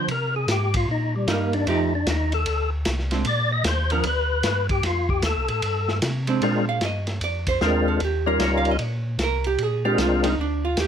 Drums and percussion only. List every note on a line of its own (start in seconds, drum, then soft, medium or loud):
0.08 ride medium
0.48 snare medium
0.48 hi-hat pedal medium
0.48 ride medium
0.74 kick medium
0.74 ride medium
1.28 snare medium
1.28 hi-hat pedal medium
1.28 ride medium
1.53 ride soft
1.67 ride medium
2.07 snare medium
2.07 hi-hat pedal medium
2.07 ride medium
2.32 ride soft
2.46 ride medium
2.85 snare medium
2.85 hi-hat pedal medium
2.85 ride medium
2.99 snare soft
3.11 snare soft
3.11 ride medium
3.25 ride medium
3.64 snare medium
3.64 hi-hat pedal medium
3.64 ride medium
3.90 ride soft
4.04 ride medium
4.43 snare medium
4.43 hi-hat pedal medium
4.43 ride medium
4.69 kick medium
4.69 ride soft
4.83 snare soft
4.83 ride medium
5.09 kick medium
5.22 snare medium
5.22 hi-hat pedal medium
5.22 ride medium
5.48 ride soft
5.62 ride medium
5.88 snare medium
6.02 snare medium
6.02 hi-hat pedal medium
6.02 ride medium
6.27 ride medium
6.42 ride medium
6.81 snare medium
6.81 hi-hat pedal medium
6.81 ride medium
7.07 snare soft
7.07 ride soft
7.21 ride medium
7.47 kick medium
7.47 ride medium
7.61 snare medium
7.61 hi-hat pedal soft
8.00 ride medium
8.40 snare medium
8.40 hi-hat pedal medium
8.40 ride medium
8.65 ride soft
8.79 ride medium
9.19 snare medium
9.19 hi-hat pedal medium
9.19 ride medium
9.44 ride soft
9.58 ride medium
9.98 snare medium
9.98 hi-hat pedal medium
9.98 ride medium
10.24 snare soft
10.24 ride medium
10.77 snare medium
10.77 hi-hat pedal medium
10.77 ride medium